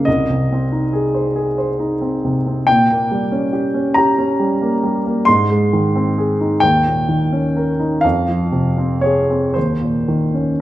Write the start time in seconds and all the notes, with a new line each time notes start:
0.05 C2 D#5
0.30 C3
0.52 C4
0.72 D#4
0.93 G#4
1.14 C5
1.36 G#4
1.58 C5
1.80 D#4
2.01 C4
2.25 C3
2.46 C4
2.67 A#2 G5
2.90 A#3
3.11 G3
3.32 C#4
3.53 G4
3.74 C#4
3.94 G4 A#5
4.18 C#4
4.40 G3
4.61 A#3
4.83 G3
5.06 A#3
5.25 G#2 C6
5.51 G#3
5.73 D#3
5.96 C4
6.18 G#4
6.41 D#4
6.60 D#2 G5
6.86 A#2
7.09 D#3
7.32 C#4
7.57 A#4
7.80 D#4
8.01 F2 F5
8.28 F3
8.52 C3
8.78 C4
9.01 G#4 C#5
9.30 C4
9.54 D#2 C5
9.81 A#2
10.08 D#3
10.34 C#4